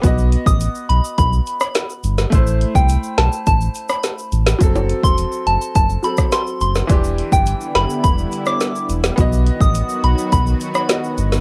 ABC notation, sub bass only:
X:1
M:4/4
L:1/16
Q:1/4=105
K:Bphr
V:1 name="Sub bass" clef=bass
B,,,3 A,,,2 z B,,, z B,,,2 z4 G,,,2 | A,,,3 C,,2 z B,,, z A,,,2 z4 A,,,2 | F,,,3 E,,,2 z F,,, z F,,,2 z4 F,,,2 | E,,,3 G,,,2 z F,,, z E,,,2 z4 E,,,2 |
B,,,3 A,,,2 z B,,, z B,,,2 z4 G,,,2 |]